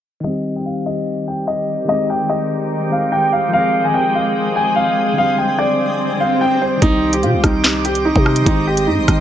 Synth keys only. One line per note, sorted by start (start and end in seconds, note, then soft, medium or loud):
0.20 1.83 D#3 medium
0.20 1.85 G3 medium
0.27 1.87 C4 medium
0.27 1.88 G4 medium
1.85 2.87 D#3 medium
1.85 2.89 G#3 medium
1.91 2.91 C4 medium
1.91 2.92 G4 medium
2.89 3.52 D#3 soft
2.89 3.50 G#3 soft
2.89 3.54 C4 soft
2.94 3.54 G4 medium
3.48 5.12 F3 medium
3.48 5.14 G#3 medium
3.55 5.15 C4 medium
3.55 5.17 G#4 medium
5.13 6.16 D3 medium
5.13 6.18 G3 medium
5.19 6.19 C4 medium
5.19 6.21 G4 medium
6.18 6.81 D3 soft
6.18 6.78 G3 soft
6.18 6.81 C4 soft
6.23 6.83 G4 medium
6.77 8.40 D#3 medium
6.77 8.42 G3 medium
6.82 8.43 C4 medium
6.82 8.44 G4 medium
6.86 8.45 C5 medium
8.41 9.20 D#3 medium
8.41 9.20 G#3 medium
8.46 9.20 C4 medium
8.46 9.20 G4 medium
8.51 9.20 C5 medium